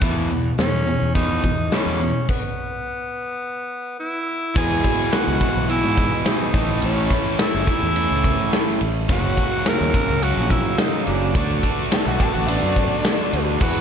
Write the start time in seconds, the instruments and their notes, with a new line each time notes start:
0.01 distorted electric guitar E2 B2 E3, fingered electric bass E2, kick, closed hi-hat
0.30 distorted electric guitar E2 B2, closed hi-hat
0.58 distorted electric guitar E2 B2, fingered electric bass E2, tenor saxophone C#4, snare, closed hi-hat
0.87 distorted electric guitar E2 B2, closed hi-hat
1.02 fingered electric bass E2
1.15 distorted electric guitar E2 B2 E3, tenor saxophone D#4, kick, closed hi-hat
1.44 distorted electric guitar E2 B2, fingered electric bass E2, kick, closed hi-hat
1.72 distorted electric guitar E2 B2 E3, tenor saxophone C#4, snare, closed hi-hat
1.86 fingered electric bass E2
2.01 distorted electric guitar E2 B2, closed hi-hat
2.29 tenor saxophone B3, kick, crash
4.00 tenor saxophone E4
4.55 distorted electric guitar E2 B2 G#4, fingered electric bass E2, steel-string acoustic guitar E3 G#3 B3 E4 F#4, overdriven electric guitar E3, tenor saxophone G#4, kick, crash
4.84 steel-string acoustic guitar B3 E4 F#4, kick, ride
5.12 steel-string acoustic guitar G#3 B3 E4, tenor saxophone F#4, snare, ride
5.27 fingered electric bass C#2
5.40 overdriven electric guitar E2 B2 E3, steel-string acoustic guitar B3 E4 F#4, kick, ride
5.56 fingered electric bass B1
5.69 distorted electric guitar E2 B2 G#4, steel-string acoustic guitar E3 G#3 B3 E4 F#4, tenor saxophone E4, ride
5.84 fingered electric bass G#2
5.97 kick, ride
6.25 steel-string acoustic guitar G#3 B3 E4 F#4, tenor saxophone D#4, snare, ride
6.54 fingered electric bass A1, overdriven electric guitar A2 E3 A3, steel-string acoustic guitar A2 E3 A3 C#4 E4 A4, kick, snare, ride
6.82 fingered electric bass A1, tenor saxophone C#4, ride
7.10 steel-string acoustic guitar A3 C#4 E4 A4, kick, ride
7.39 overdriven electric guitar A2 E3 A3, steel-string acoustic guitar A3 C#4 E4 A4, tenor saxophone E4, snare, ride
7.54 fingered electric bass F#1
7.67 distorted electric guitar A2 E3, steel-string acoustic guitar A3 C#4 E4 A4, kick, snare, ride
7.82 fingered electric bass E2
7.96 steel-string acoustic guitar A2 E3 A3 C#4 E4 A4, ride
8.11 fingered electric bass C#2
8.24 kick, ride
8.52 steel-string acoustic guitar A3 C#4 E4 A4, snare, ride
8.81 fingered electric bass A1, ride
9.09 fingered electric bass F#1, overdriven electric guitar F#2 C#3 F#3, steel-string acoustic guitar F#2 C#3 F#3 A#3 C#4 F#4, tenor saxophone F#4, kick, ride
9.37 steel-string acoustic guitar F#3 A#3 C#4 F#4, kick, ride
9.65 steel-string acoustic guitar F#3 A#3 C#4 F#4, tenor saxophone A#4, snare, ride
9.81 fingered electric bass D#2
9.94 overdriven electric guitar F#2 C#3 F#3, kick, ride
10.09 fingered electric bass C#2
10.23 steel-string acoustic guitar F#2 C#3 F#3 A#3 C#4 F#4, tenor saxophone F#4, ride
10.37 fingered electric bass A#1
10.50 tenor saxophone E4, kick, ride
10.78 steel-string acoustic guitar F#3 A#3 C#4 F#4, tenor saxophone D#4, snare, ride
11.06 fingered electric bass F#1, steel-string acoustic guitar F#3 A#3 C#4 F#4, tenor saxophone D4, snare, ride
11.35 fingered electric bass D2, overdriven electric guitar D3, steel-string acoustic guitar D3 F#3 B3 F#4 A4, distorted electric guitar A3 D4, kick, ride
11.63 steel-string acoustic guitar B3 F#4 A4, kick, ride
11.90 steel-string acoustic guitar F#3 B3 F#4 A4, lead electric guitar A4, snare, ride
12.06 fingered electric bass B1, lead electric guitar F#4
12.19 overdriven electric guitar D3 A3 D4, steel-string acoustic guitar B3 F#4 A4, lead electric guitar A4, kick, ride
12.34 fingered electric bass A1, lead electric guitar F#4
12.47 steel-string acoustic guitar D3 F#3 B3 F#4 A4, distorted electric guitar A3 D4, lead electric guitar D4, ride
12.63 fingered electric bass F#2
12.76 kick, ride
13.04 steel-string acoustic guitar F#3 B3 F#4 A4, snare, ride
13.33 fingered electric bass D2, steel-string acoustic guitar B3 F#4 A4, ride
13.60 distorted electric guitar E2 B2, fingered electric bass E2, steel-string acoustic guitar E3 G#3 B3 E4 F#4, overdriven electric guitar E3, grand piano E4 F#4 G#4, tenor saxophone F#4, kick, crash